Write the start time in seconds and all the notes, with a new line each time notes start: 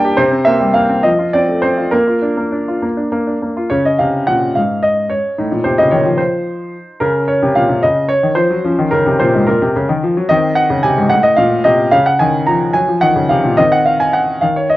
Already playing: G3 A#3 D4 G4 G5 A5 A#5
0.04 G4
0.17 C3 C5
0.32 C4
0.45 A#3 E5
0.61 G3
0.74 A#3 F5
0.89 C4
1.03 F3 D#5
1.19 F4
1.33 C4 D5
1.48 A3
1.62 C4 C5
1.78 F4
1.91 A#3 A#4
2.08 F4
2.22 D4
2.37 A#3
2.52 D4
2.68 F4
2.82 A#3
2.97 D4
3.12 A#3
3.27 D4
3.42 A#3
3.57 F4
3.69 C#3 C#4 C#5
3.85 D#5
3.98 C3 F5
4.27 A#2 F#5
4.55 G#2 F5
4.83 D#5
5.10 C#5
5.38 A2 D#4
5.52 A#2
5.64 C3 C5
5.78 C#3 D#5
5.91 D#3 C#5
6.05 F3
6.18 C5
7.00 C#3 C#4 A#4
7.28 C#5
7.43 C3
7.56 A#2 F5
7.70 C3
7.83 C#3 D#5
8.09 C#5
8.24 D#3
8.35 F3 C5
8.51 F#3
8.65 F3 C#4
8.79 D#3
8.91 C#3 A#4
9.06 C3
9.20 A#2 C5
9.35 G#2
9.47 A#2 A#4
9.62 C3
9.76 C#3
9.89 D#3
10.03 F3
10.17 F#3
10.29 D#3 C4 D#5
10.55 F#5
10.70 C#3
10.83 C3 G#5
10.98 G#2
11.09 A2 F#5
11.23 D#5
11.36 A#2 F5
11.64 C3 D#5
11.91 C#3 C#4 F5
12.06 F#5
12.19 D#3 G#5
12.47 F3 A#5
12.73 F#3 G#5
12.88 F3
13.01 D#3 F#5
13.15 C#3
13.29 C3 F5
13.44 A#2
13.57 D#3 C4 D#5
13.72 F#5
13.85 F5
14.00 G#5
14.13 F#5
14.41 D#3 F5
14.56 C#5
14.70 D#5